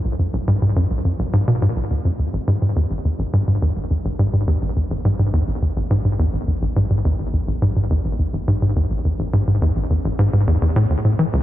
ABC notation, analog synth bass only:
X:1
M:4/4
L:1/16
Q:1/4=105
K:Bmix
V:1 name="Analog synth bass" clef=bass
B,,, F,, B,,, G,, G,, F,, B,,, F,, B,,, G,, B,, G,, B,,, D,, F,, D,, | A,,, G,, G,, E,, A,,, E,, A,,, G,, G,, E,, A,,, E,, A,,, G,, G,, E,, | A,,, E,, A,,, G,, G,, E,, A,,, E,, A,,, G,, G,, E,, A,,, E,, A,,, G,, | G,, E,, A,,, E,, A,,, G,, G,, E,, A,,, E,, A,,, G,, G,, E,, A,,, E,, |
A,,, G,, G,, E,, A,,, E,, A,,, G,, G,, E,, E,, A,, D,, A,, E, C,, |]